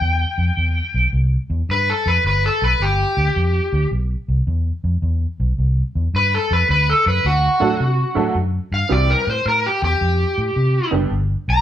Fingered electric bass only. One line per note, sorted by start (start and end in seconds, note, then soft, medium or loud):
0.01 0.24 E2 medium
0.38 0.50 F2 medium
0.57 0.80 E2 medium
0.94 1.06 B1 medium
1.13 1.36 C2 medium
1.50 1.61 E2 medium
1.69 1.92 G2 medium
2.06 2.17 F2 medium
2.24 2.47 G1 medium
2.62 2.73 B1 medium
2.80 3.03 G1 medium
3.17 3.29 D2 medium
3.36 3.59 F2 medium
3.73 3.84 D2 medium
3.91 4.14 B1 medium
4.28 4.40 C2 medium
4.47 4.70 E2 medium
4.84 4.95 F2 medium
5.02 5.25 E2 medium
5.40 5.51 B1 medium
5.58 5.81 C2 medium
5.95 6.07 E2 medium
6.14 6.37 G2 medium
6.51 6.62 F2 medium
6.69 6.92 D2 loud
7.06 7.18 F#2 medium
7.25 7.47 D2 medium
7.62 7.73 A2 medium
7.80 8.03 C3 medium
8.16 8.28 A2 medium
8.35 8.58 F#2 medium
8.72 8.83 G2 medium
8.91 9.13 C2 medium
9.27 9.39 A2 medium
9.46 9.68 A2 medium
9.82 9.94 E2 medium
10.01 10.24 F2 medium
10.38 10.49 A2 medium
10.56 10.79 C3 medium
10.93 11.04 F#1 medium
11.11 11.34 G1 loud
11.48 11.59 B1 medium